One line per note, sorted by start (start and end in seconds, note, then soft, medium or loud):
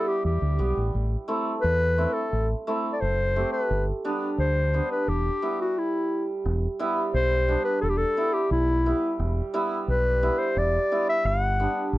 0.00 0.57 G3 medium
0.08 0.24 G4 medium
0.25 0.40 E2 medium
0.25 0.90 G4 medium
0.42 0.57 D2 medium
0.59 0.75 B1 medium
0.59 0.99 G3 medium
0.59 0.76 B3 soft
0.59 0.77 G4 medium
0.77 0.92 A1 medium
0.95 1.15 A1 medium
1.28 1.45 A3 medium
1.28 1.46 C4 medium
1.28 1.46 E4 medium
1.61 2.05 E2 medium
1.61 2.15 B4 loud
1.98 2.15 A3 soft
1.98 2.15 C4 soft
1.98 2.15 E4 medium
2.13 2.49 A4 medium
2.33 2.53 A1 medium
2.67 2.84 A3 medium
2.67 2.84 C4 medium
2.67 2.85 E4 medium
2.92 3.02 D5 medium
3.00 3.43 F#1 medium
3.00 3.52 C5 loud
3.36 3.53 A3 soft
3.36 3.53 C4 medium
3.36 3.53 G4 medium
3.52 3.85 B4 medium
3.70 3.91 G1 medium
4.04 4.72 G3 medium
4.04 4.22 B3 medium
4.04 4.22 D4 medium
4.38 4.80 D2 medium
4.38 4.87 C5 medium
4.74 5.13 G3 soft
4.74 4.91 B3 soft
4.74 4.91 D4 medium
4.92 5.10 B4 medium
5.08 5.28 E1 medium
5.08 5.60 G4 medium
5.42 6.51 G3 medium
5.42 5.60 B3 medium
5.42 5.60 E4 medium
5.61 5.80 F#4 medium
5.78 6.29 E4 medium
6.45 6.66 E1 loud
6.79 7.47 G3 medium
6.79 6.97 B3 medium
6.79 6.97 E4 medium
7.14 7.55 B1 medium
7.14 7.62 C5 loud
7.48 8.16 G3 soft
7.48 7.66 B3 soft
7.48 7.66 D4 medium
7.64 7.80 B4 medium
7.81 8.03 E1 medium
7.81 7.91 A4 medium
7.89 7.99 G4 medium
7.97 8.35 A4 loud
8.17 8.85 G3 medium
8.17 8.34 B3 soft
8.17 8.35 E4 medium
8.33 8.51 G4 medium
8.51 8.92 B1 medium
8.51 9.16 E4 medium
8.86 9.53 G3 medium
8.86 9.03 B3 soft
8.86 9.03 E4 medium
9.19 9.40 E1 loud
9.54 10.21 G3 medium
9.54 9.71 B3 medium
9.54 9.71 E4 medium
9.88 10.29 B1 medium
9.88 10.40 B4 medium
10.22 10.91 G3 soft
10.22 10.40 B3 soft
10.22 10.40 E4 medium
10.39 10.60 C5 medium
10.56 10.77 E1 loud
10.56 11.09 D5 medium
10.92 11.59 G3 medium
10.92 11.08 B3 medium
10.92 11.09 E4 medium
11.09 11.28 E5 loud
11.25 11.66 G1 medium
11.25 11.43 F5 medium
11.43 11.94 F#5 medium
11.60 11.98 G3 medium
11.60 11.77 B3 soft
11.60 11.77 D4 medium
11.93 11.98 A1 medium